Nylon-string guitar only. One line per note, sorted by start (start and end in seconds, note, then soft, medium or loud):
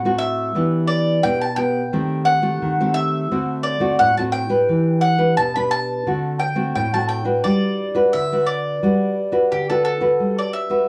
0.00 0.52 A2 medium
0.05 0.51 A3 medium
0.05 0.51 C4 medium
0.05 0.51 F#4 medium
0.55 1.21 E3 medium
0.55 1.19 B3 medium
0.55 1.19 D4 medium
0.55 1.19 G4 medium
1.24 1.90 B2 medium
1.24 1.45 B3 medium
1.24 1.45 D4 medium
1.24 1.45 G4 medium
1.57 1.80 B3 medium
1.57 1.81 D4 medium
1.57 1.81 G4 medium
1.93 2.59 D#3 medium
1.93 2.39 A3 medium
1.93 2.39 C4 medium
1.93 2.40 G4 medium
2.42 2.73 A3 medium
2.42 2.73 C4 medium
2.42 2.73 G4 medium
2.62 3.28 D#3 medium
2.81 3.26 A3 medium
2.81 3.26 C4 medium
2.81 3.27 G4 medium
3.31 3.97 D3 medium
3.31 3.77 A3 medium
3.31 3.78 C4 medium
3.31 3.78 F#4 medium
3.80 4.10 A3 medium
3.80 4.11 C4 medium
3.80 4.11 F#4 medium
4.00 4.66 A2 medium
4.18 4.47 A3 medium
4.18 4.47 C4 medium
4.18 4.47 F#4 medium
4.49 5.14 D4 medium
4.49 5.14 G4 medium
4.49 5.14 B4 medium
4.69 5.34 E3 medium
5.18 5.48 D4 medium
5.18 5.48 G4 medium
5.18 5.49 B4 medium
5.38 6.03 B2 medium
5.56 6.02 D4 medium
5.56 6.02 G4 medium
5.56 6.02 B4 medium
6.07 6.72 D3 medium
6.07 6.39 A3 medium
6.07 6.39 C4 medium
6.07 6.39 F#4 medium
6.55 6.86 A3 medium
6.55 6.86 C4 medium
6.55 6.86 F#4 medium
6.76 7.41 A2 medium
6.94 7.22 A3 medium
6.94 7.23 C4 medium
6.94 7.23 F#4 medium
7.25 7.89 D4 medium
7.25 7.90 F#4 medium
7.25 7.90 B4 medium
7.45 8.10 G3 medium
7.95 8.24 D4 medium
7.95 8.25 F#4 medium
7.95 8.25 B4 medium
8.14 8.79 D3 medium
8.32 8.78 D4 medium
8.32 8.78 F#4 medium
8.32 8.78 B4 medium
8.83 9.48 G3 medium
8.83 9.15 D4 medium
8.83 9.15 F#4 medium
8.83 9.16 B4 medium
9.32 9.62 D4 medium
9.32 9.62 F#4 medium
9.32 9.62 B4 medium
9.52 10.17 D3 medium
9.70 9.98 D4 medium
9.70 9.99 F#4 medium
9.70 9.99 B4 medium
10.01 10.65 D4 medium
10.01 10.66 F#4 medium
10.01 10.66 B4 medium
10.20 10.86 G3 medium
10.70 10.88 D4 medium
10.70 10.88 F#4 medium
10.70 10.88 B4 medium